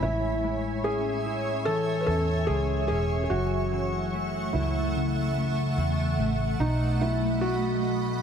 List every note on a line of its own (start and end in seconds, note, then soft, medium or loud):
0.00 2.04 A1 loud
0.00 3.31 A2 medium
0.00 0.11 C#3 medium
0.00 0.44 G#3 soft
0.00 0.11 B3 medium
0.00 1.26 E4 medium
0.00 0.87 E4 loud
0.00 3.28 C#5 medium
0.00 3.28 E5 medium
0.00 3.29 G#5 medium
0.00 6.57 C#6 medium
0.44 2.48 G#3 medium
0.84 2.08 C#4 medium
0.84 1.69 G#4 loud
1.26 4.54 E4 medium
1.65 3.73 E3 medium
1.65 2.01 A4 loud
2.01 2.08 B4 medium
2.06 2.47 E2 medium
2.06 2.90 C#4 medium
2.06 2.50 A4 loud
2.47 2.88 C#2 medium
2.47 3.40 G#3 medium
2.47 2.86 G#4 loud
2.88 3.29 E1 medium
2.88 4.13 C#4 medium
2.88 3.22 G#4 loud
3.24 3.31 G#4 medium
3.30 4.51 F#1 medium
3.30 6.60 F#2 medium
3.30 8.22 A3 medium
3.30 4.58 F#4 loud
3.30 6.57 E5 medium
3.30 8.22 F#5 medium
3.73 5.77 E3 medium
4.14 5.36 A3 medium
4.53 5.74 C#2 medium
4.53 6.14 E4 medium
4.53 6.68 E4 medium
4.96 6.60 C#3 medium
5.37 6.19 A3 medium
5.78 6.17 E2 medium
5.78 6.69 E3 medium
6.19 6.58 A1 medium
6.19 7.42 A3 medium
6.60 8.22 B1 loud
6.60 8.22 B2 medium
6.60 7.02 D#4 loud
6.60 8.22 D#5 medium
6.60 8.22 B5 medium
7.01 8.22 F#3 medium
7.01 7.40 E4 medium
7.41 8.22 A3 medium
7.41 8.20 F#4 medium